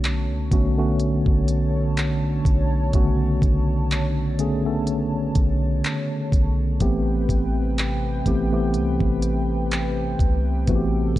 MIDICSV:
0, 0, Header, 1, 5, 480
1, 0, Start_track
1, 0, Tempo, 967742
1, 1456, Time_signature, 4, 2, 24, 8
1, 5552, End_track
2, 0, Start_track
2, 0, Title_t, "Analog synth pad"
2, 0, Program_c, 0, 89
2, 0, Note_on_c, 0, 50, 78
2, 0, Note_on_c, 0, 73, 74
2, 0, Note_on_c, 0, 81, 89
2, 3357, Note_off_c, 0, 50, 0
2, 3357, Note_off_c, 0, 73, 0
2, 3357, Note_off_c, 0, 81, 0
2, 3376, Note_on_c, 0, 71, 69
2, 3376, Note_on_c, 0, 79, 82
2, 3377, Note_on_c, 0, 48, 75
2, 5277, Note_off_c, 0, 71, 0
2, 5296, Note_on_c, 0, 69, 71
2, 5552, Note_off_c, 0, 48, 0
2, 5552, Note_off_c, 0, 69, 0
2, 5552, Note_off_c, 0, 79, 0
2, 5552, End_track
3, 0, Start_track
3, 0, Title_t, "Tine electric piano"
3, 0, Program_c, 1, 4
3, 0, Control_c, 1, 64, 127
3, 0, Note_on_c, 1, 50, 89
3, 0, Note_on_c, 1, 57, 80
3, 0, Note_on_c, 1, 59, 84
3, 0, Note_on_c, 1, 61, 80
3, 0, Note_on_c, 1, 66, 96
3, 68, Note_off_c, 1, 50, 0
3, 69, Note_off_c, 1, 57, 0
3, 69, Note_off_c, 1, 59, 0
3, 70, Note_off_c, 1, 61, 0
3, 71, Note_off_c, 1, 66, 0
3, 255, Note_on_c, 1, 50, 82
3, 258, Note_on_c, 1, 57, 76
3, 259, Note_on_c, 1, 59, 76
3, 261, Note_on_c, 1, 61, 73
3, 264, Note_on_c, 1, 66, 89
3, 348, Note_off_c, 1, 50, 0
3, 349, Note_off_c, 1, 57, 0
3, 349, Note_off_c, 1, 59, 0
3, 351, Note_off_c, 1, 61, 0
3, 352, Note_off_c, 1, 66, 0
3, 386, Note_on_c, 1, 50, 80
3, 387, Note_on_c, 1, 57, 76
3, 390, Note_on_c, 1, 59, 74
3, 391, Note_on_c, 1, 61, 74
3, 394, Note_on_c, 1, 66, 85
3, 1064, Note_off_c, 1, 50, 0
3, 1064, Note_off_c, 1, 57, 0
3, 1065, Note_off_c, 1, 59, 0
3, 1066, Note_off_c, 1, 61, 0
3, 1067, Note_off_c, 1, 66, 0
3, 1457, Note_on_c, 1, 49, 65
3, 1459, Note_on_c, 1, 57, 74
3, 1461, Note_on_c, 1, 59, 74
3, 1463, Note_on_c, 1, 61, 78
3, 1464, Note_on_c, 1, 66, 95
3, 1489, Note_on_c, 1, 50, 83
3, 1491, Note_off_c, 1, 49, 0
3, 1971, Note_off_c, 1, 57, 0
3, 1971, Note_off_c, 1, 59, 0
3, 1972, Note_off_c, 1, 61, 0
3, 1973, Note_off_c, 1, 66, 0
3, 1986, Note_off_c, 1, 50, 0
3, 2176, Note_on_c, 1, 50, 79
3, 2178, Note_on_c, 1, 57, 75
3, 2180, Note_on_c, 1, 59, 71
3, 2182, Note_on_c, 1, 61, 78
3, 2184, Note_on_c, 1, 68, 89
3, 2268, Note_off_c, 1, 50, 0
3, 2269, Note_off_c, 1, 57, 0
3, 2270, Note_off_c, 1, 59, 0
3, 2271, Note_off_c, 1, 61, 0
3, 2272, Note_off_c, 1, 68, 0
3, 2306, Note_on_c, 1, 50, 81
3, 2307, Note_on_c, 1, 57, 75
3, 2310, Note_on_c, 1, 59, 77
3, 2311, Note_on_c, 1, 61, 77
3, 2314, Note_on_c, 1, 69, 88
3, 2984, Note_off_c, 1, 50, 0
3, 2984, Note_off_c, 1, 57, 0
3, 2986, Note_off_c, 1, 59, 0
3, 2986, Note_off_c, 1, 61, 0
3, 2988, Note_off_c, 1, 69, 0
3, 3375, Note_on_c, 1, 52, 81
3, 3378, Note_on_c, 1, 57, 73
3, 3379, Note_on_c, 1, 59, 76
3, 3381, Note_on_c, 1, 60, 77
3, 3382, Control_c, 1, 64, 0
3, 3383, Note_on_c, 1, 67, 89
3, 3481, Control_c, 1, 64, 127
3, 3889, Note_off_c, 1, 52, 0
3, 3890, Note_off_c, 1, 57, 0
3, 3891, Note_off_c, 1, 59, 0
3, 3892, Note_off_c, 1, 60, 0
3, 3893, Note_off_c, 1, 67, 0
3, 4097, Note_on_c, 1, 52, 82
3, 4099, Note_on_c, 1, 57, 70
3, 4101, Note_on_c, 1, 59, 74
3, 4103, Note_on_c, 1, 60, 76
3, 4105, Note_on_c, 1, 67, 85
3, 4188, Note_off_c, 1, 52, 0
3, 4189, Note_off_c, 1, 57, 0
3, 4190, Note_off_c, 1, 59, 0
3, 4191, Note_off_c, 1, 60, 0
3, 4192, Note_off_c, 1, 67, 0
3, 4227, Note_on_c, 1, 52, 83
3, 4229, Note_on_c, 1, 57, 76
3, 4231, Note_on_c, 1, 59, 76
3, 4233, Note_on_c, 1, 60, 77
3, 4234, Note_on_c, 1, 67, 89
3, 4904, Note_off_c, 1, 52, 0
3, 4905, Note_off_c, 1, 57, 0
3, 4906, Note_off_c, 1, 59, 0
3, 4907, Note_off_c, 1, 60, 0
3, 4908, Note_off_c, 1, 67, 0
3, 5297, Note_on_c, 1, 52, 81
3, 5299, Note_on_c, 1, 57, 74
3, 5301, Note_on_c, 1, 59, 76
3, 5302, Note_on_c, 1, 60, 74
3, 5304, Note_on_c, 1, 66, 72
3, 5335, Note_off_c, 1, 66, 0
3, 5336, Note_on_c, 1, 67, 93
3, 5552, Note_off_c, 1, 52, 0
3, 5552, Note_off_c, 1, 57, 0
3, 5552, Note_off_c, 1, 59, 0
3, 5552, Note_off_c, 1, 60, 0
3, 5552, Note_off_c, 1, 67, 0
3, 5552, End_track
4, 0, Start_track
4, 0, Title_t, "808-style bass"
4, 0, Program_c, 2, 38
4, 0, Note_on_c, 2, 35, 108
4, 144, Note_on_c, 2, 37, 98
4, 152, Note_off_c, 2, 35, 0
4, 250, Note_off_c, 2, 37, 0
4, 256, Note_on_c, 2, 35, 100
4, 611, Note_off_c, 2, 35, 0
4, 626, Note_on_c, 2, 35, 97
4, 1196, Note_off_c, 2, 35, 0
4, 1216, Note_on_c, 2, 35, 99
4, 1446, Note_off_c, 2, 35, 0
4, 1456, Note_on_c, 2, 35, 113
4, 1686, Note_off_c, 2, 35, 0
4, 1696, Note_on_c, 2, 35, 100
4, 2636, Note_off_c, 2, 35, 0
4, 2656, Note_on_c, 2, 35, 102
4, 2886, Note_off_c, 2, 35, 0
4, 3136, Note_on_c, 2, 35, 96
4, 3366, Note_off_c, 2, 35, 0
4, 3376, Note_on_c, 2, 33, 109
4, 3606, Note_off_c, 2, 33, 0
4, 3616, Note_on_c, 2, 33, 106
4, 4077, Note_off_c, 2, 33, 0
4, 4096, Note_on_c, 2, 33, 99
4, 4337, Note_on_c, 2, 36, 103
4, 4344, Note_off_c, 2, 33, 0
4, 4459, Note_off_c, 2, 36, 0
4, 4466, Note_on_c, 2, 33, 98
4, 5036, Note_off_c, 2, 33, 0
4, 5056, Note_on_c, 2, 36, 91
4, 5286, Note_off_c, 2, 36, 0
4, 5296, Note_on_c, 2, 33, 111
4, 5526, Note_off_c, 2, 33, 0
4, 5536, Note_on_c, 2, 33, 102
4, 5552, Note_off_c, 2, 33, 0
4, 5552, End_track
5, 0, Start_track
5, 0, Title_t, "Drums"
5, 19, Note_on_c, 9, 42, 60
5, 24, Note_on_c, 9, 39, 97
5, 69, Note_off_c, 9, 42, 0
5, 73, Note_off_c, 9, 39, 0
5, 256, Note_on_c, 9, 36, 85
5, 257, Note_on_c, 9, 42, 77
5, 306, Note_off_c, 9, 36, 0
5, 306, Note_off_c, 9, 42, 0
5, 494, Note_on_c, 9, 42, 59
5, 544, Note_off_c, 9, 42, 0
5, 626, Note_on_c, 9, 36, 87
5, 676, Note_off_c, 9, 36, 0
5, 735, Note_on_c, 9, 42, 74
5, 784, Note_off_c, 9, 42, 0
5, 978, Note_on_c, 9, 42, 70
5, 982, Note_on_c, 9, 39, 102
5, 1027, Note_off_c, 9, 42, 0
5, 1032, Note_off_c, 9, 39, 0
5, 1216, Note_on_c, 9, 36, 86
5, 1220, Note_on_c, 9, 42, 61
5, 1265, Note_off_c, 9, 36, 0
5, 1270, Note_off_c, 9, 42, 0
5, 1455, Note_on_c, 9, 42, 72
5, 1456, Note_on_c, 9, 36, 110
5, 1504, Note_off_c, 9, 42, 0
5, 1505, Note_off_c, 9, 36, 0
5, 1696, Note_on_c, 9, 36, 95
5, 1701, Note_on_c, 9, 42, 61
5, 1746, Note_off_c, 9, 36, 0
5, 1750, Note_off_c, 9, 42, 0
5, 1939, Note_on_c, 9, 42, 57
5, 1943, Note_on_c, 9, 39, 101
5, 1989, Note_off_c, 9, 42, 0
5, 1993, Note_off_c, 9, 39, 0
5, 2177, Note_on_c, 9, 42, 75
5, 2227, Note_off_c, 9, 42, 0
5, 2415, Note_on_c, 9, 42, 62
5, 2465, Note_off_c, 9, 42, 0
5, 2655, Note_on_c, 9, 42, 76
5, 2656, Note_on_c, 9, 36, 90
5, 2704, Note_off_c, 9, 42, 0
5, 2706, Note_off_c, 9, 36, 0
5, 2898, Note_on_c, 9, 42, 66
5, 2902, Note_on_c, 9, 39, 107
5, 2947, Note_off_c, 9, 42, 0
5, 2952, Note_off_c, 9, 39, 0
5, 3136, Note_on_c, 9, 36, 87
5, 3140, Note_on_c, 9, 42, 58
5, 3185, Note_off_c, 9, 36, 0
5, 3190, Note_off_c, 9, 42, 0
5, 3374, Note_on_c, 9, 42, 74
5, 3376, Note_on_c, 9, 36, 110
5, 3424, Note_off_c, 9, 42, 0
5, 3425, Note_off_c, 9, 36, 0
5, 3616, Note_on_c, 9, 36, 94
5, 3620, Note_on_c, 9, 42, 63
5, 3665, Note_off_c, 9, 36, 0
5, 3670, Note_off_c, 9, 42, 0
5, 3859, Note_on_c, 9, 42, 58
5, 3863, Note_on_c, 9, 39, 101
5, 3909, Note_off_c, 9, 42, 0
5, 3913, Note_off_c, 9, 39, 0
5, 4096, Note_on_c, 9, 36, 87
5, 4096, Note_on_c, 9, 42, 74
5, 4146, Note_off_c, 9, 36, 0
5, 4146, Note_off_c, 9, 42, 0
5, 4335, Note_on_c, 9, 42, 60
5, 4384, Note_off_c, 9, 42, 0
5, 4466, Note_on_c, 9, 36, 86
5, 4516, Note_off_c, 9, 36, 0
5, 4575, Note_on_c, 9, 42, 80
5, 4625, Note_off_c, 9, 42, 0
5, 4818, Note_on_c, 9, 42, 68
5, 4823, Note_on_c, 9, 39, 108
5, 4868, Note_off_c, 9, 42, 0
5, 4872, Note_off_c, 9, 39, 0
5, 5056, Note_on_c, 9, 36, 85
5, 5061, Note_on_c, 9, 42, 60
5, 5106, Note_off_c, 9, 36, 0
5, 5110, Note_off_c, 9, 42, 0
5, 5295, Note_on_c, 9, 42, 70
5, 5296, Note_on_c, 9, 36, 112
5, 5344, Note_off_c, 9, 42, 0
5, 5345, Note_off_c, 9, 36, 0
5, 5536, Note_on_c, 9, 36, 90
5, 5552, Note_off_c, 9, 36, 0
5, 5552, End_track
0, 0, End_of_file